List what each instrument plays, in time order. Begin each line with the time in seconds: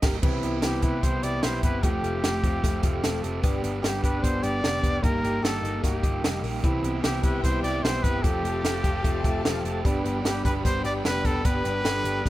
0.02 picked electric bass G1, overdriven electric guitar G3 A#3 D#4 G4, transistor combo organ D#4 G4 A#4, kick, snare, crash
0.22 picked electric bass C2, overdriven electric guitar C3 G3 B3 E4 G4, clean electric guitar E3, transistor combo organ C4 E4 B4, kick, crash
0.43 picked electric bass C2, overdriven electric guitar B3 E4 G4, closed hi-hat
0.62 picked electric bass C2, overdriven electric guitar C3 G3 B3 E4 G4, transistor combo organ C4 E4 B4, trumpet G4, snare, closed hi-hat
0.82 picked electric bass C2, overdriven electric guitar B3 E4 G4, trumpet B4, kick, closed hi-hat
1.02 picked electric bass C2, overdriven electric guitar G3 B3 E4 G4, transistor combo organ C4 E4 B4, trumpet C5, kick, closed hi-hat
1.23 picked electric bass C2, overdriven electric guitar B3 E4 G4, transistor combo organ C4 E4 B4, trumpet D5, closed hi-hat
1.42 picked electric bass B1, overdriven electric guitar C3 G3 B3 E4 G4, transistor combo organ C4 E4 B4, trumpet C5, snare, closed hi-hat
1.63 picked electric bass G1, overdriven electric guitar B3 E4 G4, trumpet B4, kick, closed hi-hat
1.82 picked electric bass F1, overdriven electric guitar F3 A3 C4 F4 G4, transistor combo organ A3 F4 G4, trumpet G4, kick, closed hi-hat
2.03 picked electric bass F1, clean electric guitar A3, overdriven electric guitar C4 F4 G4, closed hi-hat
2.23 picked electric bass F1, overdriven electric guitar F3 A3 C4 F4 G4, transistor combo organ A3 F4 G4, snare, closed hi-hat
2.43 picked electric bass F1, overdriven electric guitar C4 F4 G4, kick, closed hi-hat
2.63 picked electric bass F1, overdriven electric guitar A3 C4 F4 G4, transistor combo organ A3 F4 G4, kick, snare, closed hi-hat
2.83 picked electric bass F1, transistor combo organ A3 F4 G4, overdriven electric guitar C4 F4 G4, kick, closed hi-hat
3.03 picked electric bass E1, overdriven electric guitar F3 A3 C4 F4 G4, transistor combo organ A3 F4 A4, snare, closed hi-hat
3.22 picked electric bass F1, clean electric guitar A3, overdriven electric guitar C4 F4 G4, closed hi-hat
3.43 picked electric bass G1, overdriven electric guitar G2 D3 G3 B3 D4 G4, transistor combo organ B3 D4 G4, kick, closed hi-hat
3.63 picked electric bass G1, overdriven electric guitar G3 B3 D4 G4, closed hi-hat
3.83 picked electric bass G1, overdriven electric guitar G2 D3 G3 B3 D4 G4, transistor combo organ B3 D4 G4, trumpet G4, snare, closed hi-hat
4.03 picked electric bass G1, overdriven electric guitar G3 B3 D4 G4, trumpet B4, kick, closed hi-hat
4.22 picked electric bass G1, overdriven electric guitar G3 B3 D4 G4, transistor combo organ B3 D4 F4, trumpet C5, kick, closed hi-hat
4.42 picked electric bass G1, transistor combo organ B3 D4 G4, overdriven electric guitar B3 D4 G4, trumpet D5, closed hi-hat
4.46 overdriven electric guitar G3
4.62 picked electric bass F1, overdriven electric guitar G2 D3 G3 B3 D4 G4, transistor combo organ B3 D4 G4, snare, closed hi-hat
4.82 picked electric bass F1, overdriven electric guitar G3 B3 D4 G4, kick, closed hi-hat
5.02 picked electric bass G1, overdriven electric guitar G2 D#3 G3 A#3 D#4 G4, transistor combo organ A#3 D#4 G4, trumpet A#4, kick, closed hi-hat
5.23 picked electric bass G1, overdriven electric guitar G3 A#3 D#4 G4, closed hi-hat
5.43 picked electric bass G1, overdriven electric guitar G2 D#3 G3 A#3 D#4 G4, transistor combo organ A#3 D#4 A4, trumpet A4, snare, closed hi-hat
5.62 picked electric bass G1, overdriven electric guitar G3 A#3 D#4 G4, closed hi-hat
5.82 picked electric bass G1, overdriven electric guitar G3 A#3 D#4 G4, transistor combo organ A#3 D#4 G4, trumpet G4, kick, snare, closed hi-hat
6.02 picked electric bass G1, overdriven electric guitar G3 A#3 D#4 G4, transistor combo organ A#3 D#4 F4, kick, closed hi-hat
6.23 picked electric bass F1, overdriven electric guitar G2 D#3 G3 A#3 D#4 G4, transistor combo organ A#3 D#4 G4, snare, closed hi-hat
6.42 picked electric bass A#1, overdriven electric guitar G3 A#3 D#4 G4, open hi-hat
6.63 picked electric bass C2, overdriven electric guitar C3 G3 B3 E4 G4, clean electric guitar E3, transistor combo organ C4 E4 B4, string section G4 E5 G5, kick, closed hi-hat
6.83 picked electric bass C2, overdriven electric guitar B3 E4 G4, closed hi-hat
7.03 picked electric bass C2, overdriven electric guitar C3 G3 B3 E4 G4, transistor combo organ C4 E4 G4, trumpet G4, snare, closed hi-hat
7.23 picked electric bass C2, overdriven electric guitar B3 E4 G4, trumpet B4, kick, closed hi-hat
7.42 picked electric bass C2, overdriven electric guitar G3 B3 E4 G4, transistor combo organ C4 E4 B4, trumpet C5, kick, closed hi-hat
7.63 picked electric bass C2, overdriven electric guitar B3 E4 G4, transistor combo organ C4 E4 D5, trumpet D5, closed hi-hat
7.83 picked electric bass B1, overdriven electric guitar C3 G3 B3 E4 G4, transistor combo organ C4 E4 G4, trumpet C5, snare, closed hi-hat
8.02 picked electric bass G1, overdriven electric guitar B3 E4 G4, trumpet B4, kick, closed hi-hat
8.23 picked electric bass F1, overdriven electric guitar F3 A3 C4 F4 G4, transistor combo organ F4 G4 A4, trumpet G4, string section G4 F5 A5, kick, closed hi-hat
8.43 picked electric bass F1, clean electric guitar A3, overdriven electric guitar C4 F4 G4, closed hi-hat
8.63 picked electric bass F1, overdriven electric guitar F3 A3 C4 F4 G4, transistor combo organ F4 G4 A4, snare, closed hi-hat
8.84 picked electric bass F1, overdriven electric guitar C4 F4 G4, kick, closed hi-hat
9.04 picked electric bass F1, overdriven electric guitar A3 C4 F4 G4, transistor combo organ F4 G4 C5, kick, closed hi-hat
9.24 picked electric bass F1, overdriven electric guitar C4 F4 G4, transistor combo organ F4 G4 A4 E5, kick, closed hi-hat
9.44 picked electric bass E1, overdriven electric guitar F3 A3 C4 F4 G4, transistor combo organ F4 G4 A4 F5, snare, closed hi-hat
9.64 picked electric bass F1, clean electric guitar A3, overdriven electric guitar C4 F4 G4, transistor combo organ A5, closed hi-hat
9.84 picked electric bass G1, overdriven electric guitar G2 D3 G3 B3 D4 G4, transistor combo organ D4 G4 B4, string section D5 B5, kick, closed hi-hat
10.04 picked electric bass G1, overdriven electric guitar G3 B3 D4 G4, closed hi-hat
10.24 picked electric bass G1, overdriven electric guitar G2 D3 G3 B3 D4 G4, transistor combo organ D4 G4 B4, trumpet G4, snare, closed hi-hat
10.45 picked electric bass G1, overdriven electric guitar G3 B3 D4 G4, trumpet B4, kick, closed hi-hat
10.65 picked electric bass G1, overdriven electric guitar G3 B3 D4 G4, transistor combo organ D4 G4 B4, trumpet C5, kick, closed hi-hat
10.84 picked electric bass G1, overdriven electric guitar G3 B3 D4 G4, transistor combo organ D4 G4 B4, trumpet D5, closed hi-hat
11.05 picked electric bass F1, overdriven electric guitar G2 D3 G3 B3 D4 G4, transistor combo organ D4 G4 B4, trumpet B4, snare, closed hi-hat
11.24 picked electric bass F1, overdriven electric guitar G3 B3 D4 G4, trumpet A4, kick, closed hi-hat
11.45 picked electric bass G1, overdriven electric guitar G2 D3 G3 B3 D4 G4, transistor combo organ D4 G4 B4, trumpet B4, kick, closed hi-hat
11.65 picked electric bass G1, overdriven electric guitar G3 B3 D4 G4, closed hi-hat
11.85 picked electric bass G1, overdriven electric guitar G2 D3 G3 B3 D4 G4, transistor combo organ D4 G4 A4, snare, closed hi-hat
12.05 picked electric bass G1, overdriven electric guitar G3 B3 D4 G4, closed hi-hat
12.24 picked electric bass G1, overdriven electric guitar G3 B3, transistor combo organ D4 G4, kick, snare